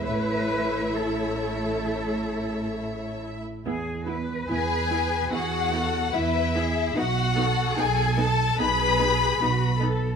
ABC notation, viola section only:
X:1
M:4/4
L:1/16
Q:1/4=73
K:A
V:1 name="Viola section"
[A,E]12- [A,E]3 z | [K:E] [B,E]2 [B,E]2 [B,E]2 [B,E]2 [B,E]2 [B,E]2 [B,E]2 [B,E]2 | [B,D]2 [B,D]2 [B,D]2 [B,D]2 [B,D]2 [B,D]2 [B,D]2 [B,D]2 |]